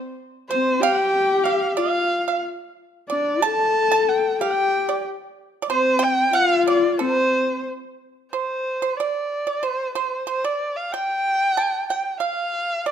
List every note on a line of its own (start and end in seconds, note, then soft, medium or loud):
0.49 0.82 C4 medium
0.49 0.83 C5 loud
0.49 0.80 C5 medium
0.81 1.79 G4 loud
0.81 1.01 F5 loud
0.81 1.46 G5 loud
1.01 1.42 G5 loud
1.44 1.77 F5 medium
1.44 1.75 F5 medium
1.77 2.43 F4 medium
1.77 2.23 F5 medium
1.77 2.39 F5 loud
2.28 2.42 F5 medium
3.09 3.45 D4 medium
3.09 3.44 D5 medium
3.09 3.40 D5 medium
3.42 4.42 A4 loud
3.42 3.88 A5 loud
3.42 4.10 A5 loud
3.91 4.37 A5 medium
4.09 4.41 G5 medium
4.40 5.05 G4 medium
4.40 4.86 G5 medium
4.40 5.02 G5 loud
4.89 5.04 D5 medium
5.62 5.69 D5 medium
5.70 6.30 C4 medium
5.70 6.00 C5 medium
5.70 6.05 C5 loud
5.99 6.31 G5 loud
6.04 6.36 G5 loud
6.33 7.01 F4 loud
6.33 6.64 F5 medium
6.33 6.67 F5 loud
6.68 6.98 D5 medium
6.68 6.99 D5 medium
6.99 7.66 C4 medium
6.99 7.62 C5 medium
6.99 7.63 C5 loud
8.33 8.79 C5 medium
8.33 8.99 C5 medium
8.82 8.97 C5 medium
8.97 9.65 D5 medium
8.97 9.45 D5 medium
9.47 9.62 D5 medium
9.63 9.93 C5 medium
9.63 9.95 C5 medium
9.95 10.26 C5 medium
10.27 10.43 C5 medium
10.27 10.46 C5 medium
10.44 10.90 D5 medium
10.44 10.78 D5 medium
10.76 10.94 F5 medium
10.93 11.89 G5 loud
10.93 11.32 G5 medium
11.32 11.54 F5 medium
11.57 11.87 A5 medium
11.89 12.19 G5 medium
11.89 12.20 G5 medium
12.20 12.82 F5 medium
12.20 12.87 F5 medium
12.86 12.92 D5 medium